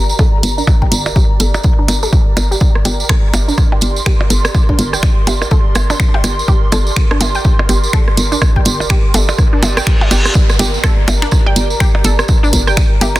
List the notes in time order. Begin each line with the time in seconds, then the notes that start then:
Already playing: G1 G4 A#4 D5 A#5
0.09 tambourine
0.19 A4, kick, tambourine, percussion blips
0.43 G1, closed hi-hat, tambourine
0.58 D4, tambourine
0.67 kick, tambourine, percussion blips
0.82 G5, kick
0.92 G1, closed hi-hat, tambourine
1.06 tambourine, percussion blips
1.16 G4, kick, tambourine
1.40 G1 A4, closed hi-hat, tambourine
1.54 tambourine, percussion blips
1.63 kick, tambourine
1.79 D4
1.88 G1, closed hi-hat, tambourine, percussion blips
2.03 A4, tambourine
2.13 kick, tambourine
2.37 G1 A#4, closed hi-hat, tambourine, percussion blips
2.51 G4, tambourine
2.60 kick, tambourine
2.75 cross-stick
2.85 G1 G4, closed hi-hat, tambourine, percussion blips
3.00 tambourine
3.09 A4, finger snap, kick, cross-stick
3.33 G1 C6, closed hi-hat, tambourine, percussion blips
3.48 D4, tambourine
3.58 kick, cross-stick, tambourine
3.72 G5, percussion blips
3.81 G1, closed hi-hat, tambourine
3.96 tambourine
4.06 G4, finger snap, kick, cross-stick
4.21 percussion blips
4.30 G1 A4, closed hi-hat, tambourine
4.45 cross-stick, tambourine
4.54 kick, tambourine, percussion blips
4.69 D4, kick
4.79 G1, closed hi-hat, tambourine
4.93 G5, cross-stick, tambourine
5.03 finger snap, kick, percussion blips
5.27 G1 G4, closed hi-hat, tambourine, percussion blips
5.42 cross-stick, tambourine, percussion blips
5.51 A4, kick, tambourine
5.75 G1, cross-stick, closed hi-hat, tambourine, percussion blips
5.90 D4, tambourine, percussion blips
6.00 finger snap, kick
6.14 G5, percussion blips
6.24 G1, cross-stick, closed hi-hat, tambourine, percussion blips
6.39 tambourine
6.48 G4, kick, tambourine
6.72 G1 A4, cross-stick, closed hi-hat, tambourine, percussion blips
6.87 tambourine
6.96 finger snap, kick
7.11 D4, cross-stick, percussion blips
7.20 G1, closed hi-hat, tambourine, percussion blips
7.35 G5, tambourine
7.44 kick, tambourine
7.59 cross-stick, percussion blips
7.69 G1 G4, closed hi-hat, tambourine
7.84 tambourine
7.93 A4, finger snap, kick, percussion blips
8.08 cross-stick
8.17 G1, closed hi-hat, tambourine
8.32 D4, tambourine
8.41 kick, cross-stick, tambourine, percussion blips
8.56 G5, kick
8.65 G1, closed hi-hat, tambourine
8.80 tambourine, percussion blips
8.90 G4, finger snap, kick, cross-stick
9.14 G1 A4, closed hi-hat, tambourine, percussion blips
9.29 tambourine, percussion blips
9.38 kick, cross-stick, tambourine, reverse cymbal
9.53 D4
9.62 G1, closed hi-hat, tambourine, percussion blips
9.77 G5, cross-stick, tambourine
9.87 finger snap, kick
10.01 percussion blips
10.11 G1 G4, closed hi-hat, tambourine, percussion blips
10.25 cross-stick, tambourine
10.35 kick, tambourine, downlifter
10.49 cross-stick, tambourine
10.59 G1 G4, closed hi-hat, tambourine, percussion blips
10.74 tambourine
10.82 A4 A#5, finger snap, kick, cross-stick, tambourine
11.08 G1, closed hi-hat, tambourine, percussion blips
11.22 D4, finger snap, tambourine
11.31 kick, cross-stick, tambourine
11.46 G5, percussion blips
11.56 G1, closed hi-hat, tambourine
11.70 tambourine
11.80 G4, finger snap, kick, cross-stick, tambourine
11.95 percussion blips
12.04 G1 A4, closed hi-hat, tambourine
12.19 cross-stick, tambourine
12.28 kick, tambourine, percussion blips
12.43 D4, tambourine
12.53 G1, kick, closed hi-hat, tambourine
12.67 G5, cross-stick, tambourine
12.77 finger snap, kick, tambourine, percussion blips
13.01 G1 G4, closed hi-hat, tambourine, percussion blips
13.16 finger snap, cross-stick, tambourine, percussion blips